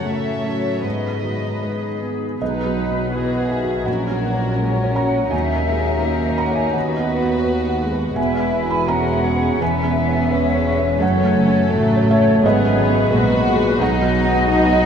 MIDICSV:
0, 0, Header, 1, 10, 480
1, 0, Start_track
1, 0, Key_signature, 5, "major"
1, 0, Tempo, 781250
1, 1479, Time_signature, 4, 2, 24, 8
1, 1480, Tempo, 729927
1, 3400, Tempo, 714286
1, 6760, Tempo, 697674
1, 9876, End_track
2, 0, Start_track
2, 0, Title_t, "Flute section"
2, 0, Program_c, 0, 73
2, 996, Note_on_c, 0, 68, 45
2, 1452, Note_off_c, 0, 68, 0
2, 1475, Note_on_c, 0, 71, 61
2, 2184, Note_on_c, 0, 76, 56
2, 2201, Note_off_c, 0, 71, 0
2, 2434, Note_off_c, 0, 76, 0
2, 2441, Note_on_c, 0, 73, 50
2, 3149, Note_on_c, 0, 78, 59
2, 3157, Note_off_c, 0, 73, 0
2, 3383, Note_on_c, 0, 76, 73
2, 3394, Note_off_c, 0, 78, 0
2, 4110, Note_off_c, 0, 76, 0
2, 4112, Note_on_c, 0, 78, 64
2, 4218, Note_on_c, 0, 76, 57
2, 4234, Note_off_c, 0, 78, 0
2, 4347, Note_off_c, 0, 76, 0
2, 4352, Note_on_c, 0, 75, 54
2, 4822, Note_off_c, 0, 75, 0
2, 5300, Note_on_c, 0, 76, 77
2, 5645, Note_off_c, 0, 76, 0
2, 5673, Note_on_c, 0, 80, 63
2, 5796, Note_off_c, 0, 80, 0
2, 5796, Note_on_c, 0, 78, 74
2, 6277, Note_off_c, 0, 78, 0
2, 6283, Note_on_c, 0, 76, 78
2, 7234, Note_on_c, 0, 73, 81
2, 7241, Note_off_c, 0, 76, 0
2, 7747, Note_off_c, 0, 73, 0
2, 7958, Note_on_c, 0, 73, 79
2, 8200, Note_off_c, 0, 73, 0
2, 8211, Note_on_c, 0, 71, 88
2, 9133, Note_off_c, 0, 71, 0
2, 9155, Note_on_c, 0, 75, 102
2, 9876, Note_off_c, 0, 75, 0
2, 9876, End_track
3, 0, Start_track
3, 0, Title_t, "Violin section"
3, 0, Program_c, 1, 48
3, 40, Note_on_c, 1, 76, 51
3, 519, Note_off_c, 1, 76, 0
3, 523, Note_on_c, 1, 75, 46
3, 1232, Note_off_c, 1, 75, 0
3, 1485, Note_on_c, 1, 71, 43
3, 1938, Note_off_c, 1, 71, 0
3, 1966, Note_on_c, 1, 66, 45
3, 2435, Note_off_c, 1, 66, 0
3, 2438, Note_on_c, 1, 70, 48
3, 3377, Note_off_c, 1, 70, 0
3, 3396, Note_on_c, 1, 70, 52
3, 4336, Note_off_c, 1, 70, 0
3, 4356, Note_on_c, 1, 71, 58
3, 5299, Note_off_c, 1, 71, 0
3, 5307, Note_on_c, 1, 71, 54
3, 5785, Note_off_c, 1, 71, 0
3, 5790, Note_on_c, 1, 70, 64
3, 6034, Note_off_c, 1, 70, 0
3, 6036, Note_on_c, 1, 68, 60
3, 6277, Note_off_c, 1, 68, 0
3, 6280, Note_on_c, 1, 71, 56
3, 6739, Note_off_c, 1, 71, 0
3, 6747, Note_on_c, 1, 71, 59
3, 7223, Note_off_c, 1, 71, 0
3, 7235, Note_on_c, 1, 69, 63
3, 8207, Note_on_c, 1, 68, 65
3, 8210, Note_off_c, 1, 69, 0
3, 8668, Note_on_c, 1, 66, 70
3, 8669, Note_off_c, 1, 68, 0
3, 9146, Note_off_c, 1, 66, 0
3, 9158, Note_on_c, 1, 66, 63
3, 9619, Note_off_c, 1, 66, 0
3, 9634, Note_on_c, 1, 66, 70
3, 9876, Note_off_c, 1, 66, 0
3, 9876, End_track
4, 0, Start_track
4, 0, Title_t, "Felt piano"
4, 0, Program_c, 2, 0
4, 0, Control_c, 2, 64, 127
4, 0, Note_on_c, 2, 42, 44
4, 0, Note_on_c, 2, 66, 33
4, 29, Note_on_c, 2, 57, 28
4, 176, Note_off_c, 2, 66, 0
4, 269, Note_on_c, 2, 61, 28
4, 415, Note_off_c, 2, 57, 0
4, 491, Note_off_c, 2, 42, 0
4, 508, Note_on_c, 2, 44, 35
4, 515, Note_off_c, 2, 61, 0
4, 532, Control_c, 2, 64, 0
4, 638, Control_c, 2, 64, 127
4, 761, Note_on_c, 2, 66, 30
4, 997, Note_on_c, 2, 71, 45
4, 1001, Note_on_c, 2, 56, 27
4, 1146, Note_off_c, 2, 66, 0
4, 1246, Note_on_c, 2, 59, 27
4, 1387, Note_off_c, 2, 56, 0
4, 1450, Note_off_c, 2, 44, 0
4, 1453, Note_off_c, 2, 71, 0
4, 1481, Note_off_c, 2, 59, 0
4, 1482, Note_on_c, 2, 35, 44
4, 1485, Note_on_c, 2, 75, 64
4, 1493, Control_c, 2, 64, 0
4, 1592, Control_c, 2, 64, 127
4, 1648, Note_on_c, 2, 54, 34
4, 1806, Note_on_c, 2, 59, 35
4, 1901, Note_off_c, 2, 54, 0
4, 1971, Note_on_c, 2, 66, 38
4, 2061, Note_off_c, 2, 59, 0
4, 2128, Note_on_c, 2, 71, 37
4, 2180, Note_off_c, 2, 75, 0
4, 2196, Note_on_c, 2, 80, 59
4, 2224, Note_off_c, 2, 66, 0
4, 2288, Note_on_c, 2, 66, 39
4, 2382, Note_off_c, 2, 71, 0
4, 2418, Note_off_c, 2, 35, 0
4, 2422, Note_off_c, 2, 80, 0
4, 2432, Note_on_c, 2, 78, 56
4, 2445, Note_off_c, 2, 66, 0
4, 2446, Note_on_c, 2, 34, 49
4, 2455, Control_c, 2, 64, 0
4, 2559, Control_c, 2, 64, 127
4, 2600, Note_on_c, 2, 54, 39
4, 2759, Note_on_c, 2, 61, 37
4, 2854, Note_off_c, 2, 54, 0
4, 2913, Note_on_c, 2, 66, 41
4, 3014, Note_off_c, 2, 61, 0
4, 3076, Note_on_c, 2, 73, 40
4, 3126, Note_off_c, 2, 78, 0
4, 3157, Note_on_c, 2, 82, 70
4, 3172, Note_off_c, 2, 66, 0
4, 3228, Note_on_c, 2, 66, 38
4, 3334, Note_off_c, 2, 73, 0
4, 3374, Note_off_c, 2, 34, 0
4, 3381, Note_off_c, 2, 82, 0
4, 3386, Note_on_c, 2, 80, 66
4, 3393, Note_off_c, 2, 66, 0
4, 3397, Note_on_c, 2, 39, 50
4, 3411, Control_c, 2, 64, 0
4, 3514, Control_c, 2, 64, 127
4, 3562, Note_on_c, 2, 58, 38
4, 3715, Note_on_c, 2, 61, 43
4, 3818, Note_off_c, 2, 58, 0
4, 3868, Note_on_c, 2, 70, 39
4, 3973, Note_off_c, 2, 61, 0
4, 4038, Note_on_c, 2, 73, 43
4, 4085, Note_off_c, 2, 80, 0
4, 4105, Note_on_c, 2, 82, 76
4, 4128, Note_off_c, 2, 70, 0
4, 4195, Note_on_c, 2, 70, 38
4, 4222, Note_off_c, 2, 82, 0
4, 4224, Note_on_c, 2, 80, 65
4, 4292, Note_off_c, 2, 73, 0
4, 4329, Note_off_c, 2, 39, 0
4, 4341, Note_off_c, 2, 80, 0
4, 4343, Note_on_c, 2, 78, 63
4, 4351, Note_on_c, 2, 39, 47
4, 4355, Note_off_c, 2, 70, 0
4, 4368, Control_c, 2, 64, 0
4, 4478, Control_c, 2, 64, 127
4, 4513, Note_on_c, 2, 59, 43
4, 4664, Note_on_c, 2, 66, 43
4, 4769, Note_off_c, 2, 59, 0
4, 4800, Note_off_c, 2, 78, 0
4, 4818, Note_on_c, 2, 71, 45
4, 4924, Note_off_c, 2, 66, 0
4, 4986, Note_on_c, 2, 78, 46
4, 5080, Note_off_c, 2, 71, 0
4, 5140, Note_on_c, 2, 71, 41
4, 5245, Note_off_c, 2, 78, 0
4, 5283, Note_off_c, 2, 39, 0
4, 5303, Note_on_c, 2, 80, 68
4, 5307, Note_off_c, 2, 71, 0
4, 5308, Note_on_c, 2, 40, 61
4, 5325, Control_c, 2, 64, 0
4, 5418, Control_c, 2, 64, 127
4, 5462, Note_on_c, 2, 59, 42
4, 5632, Note_on_c, 2, 64, 45
4, 5646, Note_off_c, 2, 80, 0
4, 5668, Note_on_c, 2, 83, 77
4, 5727, Note_off_c, 2, 59, 0
4, 5785, Note_off_c, 2, 83, 0
4, 5789, Note_on_c, 2, 82, 81
4, 5793, Note_on_c, 2, 59, 44
4, 5892, Note_off_c, 2, 64, 0
4, 5952, Note_on_c, 2, 76, 48
4, 6052, Note_off_c, 2, 59, 0
4, 6110, Note_on_c, 2, 71, 47
4, 6211, Note_off_c, 2, 76, 0
4, 6247, Note_off_c, 2, 82, 0
4, 6249, Note_off_c, 2, 40, 0
4, 6260, Note_on_c, 2, 40, 54
4, 6274, Note_off_c, 2, 71, 0
4, 6285, Note_on_c, 2, 80, 80
4, 6291, Control_c, 2, 64, 0
4, 6400, Control_c, 2, 64, 127
4, 6433, Note_on_c, 2, 59, 46
4, 6592, Note_on_c, 2, 61, 50
4, 6691, Note_off_c, 2, 59, 0
4, 6750, Note_on_c, 2, 71, 50
4, 6851, Note_off_c, 2, 61, 0
4, 6910, Note_on_c, 2, 73, 52
4, 7011, Note_off_c, 2, 71, 0
4, 7068, Note_on_c, 2, 71, 52
4, 7170, Note_off_c, 2, 73, 0
4, 7201, Note_off_c, 2, 40, 0
4, 7214, Note_off_c, 2, 80, 0
4, 7224, Note_on_c, 2, 42, 72
4, 7233, Note_off_c, 2, 71, 0
4, 7236, Note_on_c, 2, 78, 78
4, 7250, Control_c, 2, 64, 0
4, 7362, Control_c, 2, 64, 127
4, 7378, Note_on_c, 2, 57, 51
4, 7546, Note_on_c, 2, 61, 50
4, 7650, Note_off_c, 2, 57, 0
4, 7715, Note_on_c, 2, 69, 54
4, 7816, Note_off_c, 2, 61, 0
4, 7885, Note_on_c, 2, 73, 56
4, 7943, Note_off_c, 2, 78, 0
4, 7982, Note_off_c, 2, 69, 0
4, 7984, Note_on_c, 2, 76, 86
4, 8036, Note_on_c, 2, 69, 52
4, 8146, Note_off_c, 2, 73, 0
4, 8177, Note_off_c, 2, 42, 0
4, 8201, Note_off_c, 2, 76, 0
4, 8204, Note_off_c, 2, 69, 0
4, 8207, Note_on_c, 2, 44, 69
4, 8225, Control_c, 2, 64, 0
4, 8225, Note_on_c, 2, 75, 89
4, 8343, Control_c, 2, 64, 127
4, 8358, Note_on_c, 2, 56, 55
4, 8524, Note_on_c, 2, 59, 55
4, 8612, Note_off_c, 2, 56, 0
4, 8664, Note_off_c, 2, 44, 0
4, 8678, Note_on_c, 2, 68, 58
4, 8774, Note_off_c, 2, 59, 0
4, 8829, Note_on_c, 2, 71, 52
4, 8930, Note_off_c, 2, 68, 0
4, 8983, Note_on_c, 2, 68, 58
4, 9086, Note_off_c, 2, 71, 0
4, 9131, Note_off_c, 2, 75, 0
4, 9146, Note_on_c, 2, 35, 69
4, 9147, Note_off_c, 2, 68, 0
4, 9159, Note_on_c, 2, 78, 90
4, 9166, Control_c, 2, 64, 0
4, 9281, Control_c, 2, 64, 127
4, 9301, Note_on_c, 2, 54, 50
4, 9460, Note_on_c, 2, 63, 58
4, 9557, Note_off_c, 2, 54, 0
4, 9616, Note_on_c, 2, 66, 61
4, 9721, Note_off_c, 2, 63, 0
4, 9786, Note_on_c, 2, 75, 61
4, 9876, Note_off_c, 2, 35, 0
4, 9876, Note_off_c, 2, 66, 0
4, 9876, Note_off_c, 2, 75, 0
4, 9876, Note_off_c, 2, 78, 0
4, 9876, End_track
5, 0, Start_track
5, 0, Title_t, "Violin section"
5, 0, Program_c, 3, 48
5, 0, Note_on_c, 3, 73, 38
5, 46, Note_on_c, 3, 69, 37
5, 501, Note_off_c, 3, 73, 0
5, 511, Note_on_c, 3, 71, 34
5, 512, Note_off_c, 3, 69, 0
5, 515, Note_off_c, 3, 71, 0
5, 515, Note_on_c, 3, 71, 38
5, 1350, Note_off_c, 3, 71, 0
5, 1488, Note_on_c, 3, 63, 40
5, 1940, Note_off_c, 3, 63, 0
5, 1966, Note_on_c, 3, 68, 44
5, 2440, Note_on_c, 3, 66, 40
5, 2445, Note_off_c, 3, 68, 0
5, 2909, Note_on_c, 3, 61, 48
5, 2917, Note_off_c, 3, 66, 0
5, 3394, Note_off_c, 3, 61, 0
5, 3400, Note_on_c, 3, 63, 48
5, 4338, Note_off_c, 3, 63, 0
5, 4361, Note_on_c, 3, 66, 52
5, 5315, Note_off_c, 3, 66, 0
5, 5315, Note_on_c, 3, 64, 57
5, 5790, Note_off_c, 3, 64, 0
5, 5790, Note_on_c, 3, 61, 54
5, 6268, Note_on_c, 3, 59, 58
5, 6274, Note_off_c, 3, 61, 0
5, 6511, Note_off_c, 3, 59, 0
5, 6519, Note_on_c, 3, 59, 65
5, 6750, Note_on_c, 3, 61, 61
5, 6753, Note_off_c, 3, 59, 0
5, 7230, Note_off_c, 3, 61, 0
5, 7239, Note_on_c, 3, 61, 65
5, 7717, Note_off_c, 3, 61, 0
5, 7722, Note_on_c, 3, 57, 62
5, 8209, Note_off_c, 3, 57, 0
5, 8217, Note_on_c, 3, 59, 69
5, 8673, Note_off_c, 3, 59, 0
5, 8679, Note_on_c, 3, 66, 72
5, 9139, Note_on_c, 3, 63, 70
5, 9142, Note_off_c, 3, 66, 0
5, 9619, Note_off_c, 3, 63, 0
5, 9632, Note_on_c, 3, 63, 74
5, 9876, Note_off_c, 3, 63, 0
5, 9876, End_track
6, 0, Start_track
6, 0, Title_t, "French horn section"
6, 0, Program_c, 4, 60
6, 1484, Note_on_c, 4, 66, 46
6, 1490, Note_on_c, 4, 59, 50
6, 2422, Note_off_c, 4, 59, 0
6, 2430, Note_on_c, 4, 61, 53
6, 3387, Note_on_c, 4, 58, 52
6, 3392, Note_off_c, 4, 61, 0
6, 4331, Note_off_c, 4, 58, 0
6, 4362, Note_on_c, 4, 59, 58
6, 5199, Note_off_c, 4, 66, 0
6, 5313, Note_on_c, 4, 66, 55
6, 6259, Note_off_c, 4, 66, 0
6, 6274, Note_on_c, 4, 61, 69
6, 7241, Note_off_c, 4, 59, 0
6, 7241, Note_on_c, 4, 57, 70
6, 8194, Note_off_c, 4, 57, 0
6, 8210, Note_on_c, 4, 54, 80
6, 8669, Note_on_c, 4, 71, 66
6, 8678, Note_off_c, 4, 61, 0
6, 9130, Note_off_c, 4, 54, 0
6, 9138, Note_on_c, 4, 63, 93
6, 9139, Note_on_c, 4, 54, 87
6, 9147, Note_off_c, 4, 71, 0
6, 9876, Note_off_c, 4, 54, 0
6, 9876, Note_off_c, 4, 63, 0
6, 9876, End_track
7, 0, Start_track
7, 0, Title_t, "Harp"
7, 0, Program_c, 5, 46
7, 0, Note_on_c, 5, 42, 40
7, 0, Note_on_c, 5, 49, 30
7, 0, Note_on_c, 5, 73, 35
7, 22, Note_on_c, 5, 57, 33
7, 250, Note_off_c, 5, 73, 0
7, 258, Note_on_c, 5, 73, 30
7, 501, Note_on_c, 5, 44, 37
7, 529, Note_off_c, 5, 57, 0
7, 529, Note_off_c, 5, 73, 0
7, 532, Note_off_c, 5, 42, 0
7, 533, Note_off_c, 5, 49, 0
7, 742, Note_on_c, 5, 51, 29
7, 991, Note_on_c, 5, 56, 28
7, 1233, Note_on_c, 5, 71, 33
7, 1467, Note_on_c, 5, 47, 48
7, 1488, Note_off_c, 5, 51, 0
7, 1490, Note_off_c, 5, 44, 0
7, 1494, Note_off_c, 5, 56, 0
7, 1715, Note_on_c, 5, 59, 35
7, 1948, Note_on_c, 5, 54, 39
7, 2184, Note_off_c, 5, 71, 0
7, 2192, Note_on_c, 5, 71, 43
7, 2435, Note_on_c, 5, 46, 46
7, 2455, Note_off_c, 5, 47, 0
7, 2456, Note_off_c, 5, 71, 0
7, 2459, Note_off_c, 5, 59, 0
7, 2672, Note_on_c, 5, 58, 39
7, 2903, Note_off_c, 5, 54, 0
7, 2911, Note_on_c, 5, 54, 38
7, 3147, Note_on_c, 5, 73, 44
7, 3391, Note_on_c, 5, 51, 50
7, 3414, Note_off_c, 5, 46, 0
7, 3635, Note_on_c, 5, 61, 35
7, 3870, Note_off_c, 5, 58, 0
7, 3878, Note_on_c, 5, 58, 43
7, 4107, Note_off_c, 5, 73, 0
7, 4115, Note_on_c, 5, 73, 48
7, 4345, Note_off_c, 5, 51, 0
7, 4353, Note_on_c, 5, 51, 54
7, 4374, Note_off_c, 5, 58, 0
7, 4374, Note_off_c, 5, 73, 0
7, 4593, Note_on_c, 5, 63, 44
7, 4824, Note_on_c, 5, 59, 43
7, 5069, Note_on_c, 5, 66, 47
7, 5300, Note_on_c, 5, 52, 55
7, 5329, Note_off_c, 5, 61, 0
7, 5330, Note_off_c, 5, 51, 0
7, 5331, Note_off_c, 5, 63, 0
7, 5521, Note_off_c, 5, 54, 0
7, 5548, Note_on_c, 5, 64, 41
7, 5783, Note_off_c, 5, 59, 0
7, 5791, Note_on_c, 5, 59, 47
7, 6030, Note_on_c, 5, 71, 53
7, 6263, Note_off_c, 5, 52, 0
7, 6272, Note_on_c, 5, 52, 58
7, 6505, Note_off_c, 5, 64, 0
7, 6513, Note_on_c, 5, 64, 45
7, 6750, Note_off_c, 5, 59, 0
7, 6758, Note_on_c, 5, 59, 51
7, 6994, Note_on_c, 5, 73, 57
7, 7234, Note_on_c, 5, 42, 65
7, 7253, Note_off_c, 5, 71, 0
7, 7254, Note_off_c, 5, 52, 0
7, 7255, Note_off_c, 5, 64, 0
7, 7256, Note_off_c, 5, 66, 0
7, 7258, Note_off_c, 5, 59, 0
7, 7475, Note_on_c, 5, 49, 50
7, 7721, Note_on_c, 5, 57, 58
7, 7962, Note_off_c, 5, 73, 0
7, 7970, Note_on_c, 5, 73, 61
7, 8212, Note_on_c, 5, 44, 71
7, 8228, Note_off_c, 5, 42, 0
7, 8228, Note_off_c, 5, 49, 0
7, 8228, Note_off_c, 5, 57, 0
7, 8230, Note_off_c, 5, 73, 0
7, 8451, Note_on_c, 5, 51, 58
7, 8683, Note_on_c, 5, 56, 53
7, 8922, Note_on_c, 5, 71, 64
7, 9148, Note_on_c, 5, 47, 73
7, 9172, Note_off_c, 5, 44, 0
7, 9173, Note_off_c, 5, 51, 0
7, 9393, Note_on_c, 5, 54, 57
7, 9625, Note_on_c, 5, 63, 63
7, 9869, Note_off_c, 5, 71, 0
7, 9876, Note_off_c, 5, 47, 0
7, 9876, Note_off_c, 5, 54, 0
7, 9876, Note_off_c, 5, 56, 0
7, 9876, Note_off_c, 5, 63, 0
7, 9876, End_track
8, 0, Start_track
8, 0, Title_t, "Viola section"
8, 0, Program_c, 6, 48
8, 41, Note_on_c, 6, 57, 42
8, 44, Note_on_c, 6, 61, 42
8, 272, Note_off_c, 6, 57, 0
8, 283, Note_on_c, 6, 54, 44
8, 514, Note_on_c, 6, 63, 38
8, 516, Note_on_c, 6, 59, 37
8, 517, Note_off_c, 6, 54, 0
8, 521, Note_off_c, 6, 61, 0
8, 1349, Note_off_c, 6, 63, 0
8, 1351, Note_off_c, 6, 59, 0
8, 1471, Note_on_c, 6, 56, 47
8, 1699, Note_off_c, 6, 56, 0
8, 1723, Note_on_c, 6, 54, 46
8, 1959, Note_on_c, 6, 52, 51
8, 1963, Note_off_c, 6, 54, 0
8, 2201, Note_on_c, 6, 51, 50
8, 2202, Note_off_c, 6, 52, 0
8, 2438, Note_on_c, 6, 54, 46
8, 2442, Note_off_c, 6, 51, 0
8, 2676, Note_on_c, 6, 58, 50
8, 2678, Note_off_c, 6, 54, 0
8, 2909, Note_on_c, 6, 56, 47
8, 2911, Note_off_c, 6, 58, 0
8, 3143, Note_on_c, 6, 54, 51
8, 3153, Note_off_c, 6, 56, 0
8, 3376, Note_off_c, 6, 54, 0
8, 3384, Note_on_c, 6, 54, 52
8, 3629, Note_off_c, 6, 54, 0
8, 3633, Note_on_c, 6, 56, 54
8, 3872, Note_on_c, 6, 58, 53
8, 3877, Note_off_c, 6, 56, 0
8, 4346, Note_on_c, 6, 59, 48
8, 4352, Note_off_c, 6, 58, 0
8, 4575, Note_off_c, 6, 59, 0
8, 4583, Note_on_c, 6, 59, 55
8, 4810, Note_off_c, 6, 59, 0
8, 4818, Note_on_c, 6, 59, 52
8, 5060, Note_on_c, 6, 56, 54
8, 5064, Note_off_c, 6, 59, 0
8, 6752, Note_off_c, 6, 56, 0
8, 6761, Note_on_c, 6, 56, 63
8, 7231, Note_off_c, 6, 56, 0
8, 7238, Note_on_c, 6, 57, 63
8, 7481, Note_off_c, 6, 57, 0
8, 7488, Note_on_c, 6, 57, 68
8, 7730, Note_off_c, 6, 57, 0
8, 7732, Note_on_c, 6, 54, 75
8, 7970, Note_off_c, 6, 54, 0
8, 7976, Note_on_c, 6, 57, 80
8, 8214, Note_off_c, 6, 57, 0
8, 8221, Note_on_c, 6, 59, 66
8, 8684, Note_on_c, 6, 56, 71
8, 8685, Note_off_c, 6, 59, 0
8, 8909, Note_off_c, 6, 56, 0
8, 8917, Note_on_c, 6, 56, 72
8, 9153, Note_off_c, 6, 56, 0
8, 9157, Note_on_c, 6, 54, 76
8, 9876, Note_off_c, 6, 54, 0
8, 9876, End_track
9, 0, Start_track
9, 0, Title_t, "Cello section"
9, 0, Program_c, 7, 48
9, 38, Note_on_c, 7, 45, 38
9, 508, Note_off_c, 7, 45, 0
9, 518, Note_on_c, 7, 44, 36
9, 1351, Note_off_c, 7, 44, 0
9, 1475, Note_on_c, 7, 47, 49
9, 2414, Note_off_c, 7, 47, 0
9, 2436, Note_on_c, 7, 46, 50
9, 3395, Note_off_c, 7, 46, 0
9, 3403, Note_on_c, 7, 39, 51
9, 4339, Note_off_c, 7, 39, 0
9, 4354, Note_on_c, 7, 39, 50
9, 5292, Note_off_c, 7, 39, 0
9, 5311, Note_on_c, 7, 40, 54
9, 6258, Note_off_c, 7, 40, 0
9, 6277, Note_on_c, 7, 40, 61
9, 7218, Note_off_c, 7, 40, 0
9, 7240, Note_on_c, 7, 42, 71
9, 7724, Note_on_c, 7, 45, 64
9, 7727, Note_off_c, 7, 42, 0
9, 8210, Note_off_c, 7, 45, 0
9, 8217, Note_on_c, 7, 44, 73
9, 8681, Note_on_c, 7, 46, 72
9, 8683, Note_off_c, 7, 44, 0
9, 9144, Note_off_c, 7, 46, 0
9, 9156, Note_on_c, 7, 47, 85
9, 9876, Note_off_c, 7, 47, 0
9, 9876, End_track
10, 0, Start_track
10, 0, Title_t, "Double bass section"
10, 0, Program_c, 8, 48
10, 1475, Note_on_c, 8, 35, 50
10, 2414, Note_off_c, 8, 35, 0
10, 2439, Note_on_c, 8, 34, 51
10, 3394, Note_on_c, 8, 39, 52
10, 3397, Note_off_c, 8, 34, 0
10, 4335, Note_off_c, 8, 39, 0
10, 4351, Note_on_c, 8, 39, 58
10, 5291, Note_off_c, 8, 39, 0
10, 5312, Note_on_c, 8, 28, 61
10, 6258, Note_off_c, 8, 28, 0
10, 6278, Note_on_c, 8, 28, 69
10, 7219, Note_off_c, 8, 28, 0
10, 7244, Note_on_c, 8, 30, 64
10, 7726, Note_on_c, 8, 33, 68
10, 7729, Note_off_c, 8, 30, 0
10, 8204, Note_on_c, 8, 32, 74
10, 8212, Note_off_c, 8, 33, 0
10, 8671, Note_on_c, 8, 34, 66
10, 8676, Note_off_c, 8, 32, 0
10, 9139, Note_off_c, 8, 34, 0
10, 9156, Note_on_c, 8, 35, 75
10, 9876, Note_off_c, 8, 35, 0
10, 9876, End_track
0, 0, End_of_file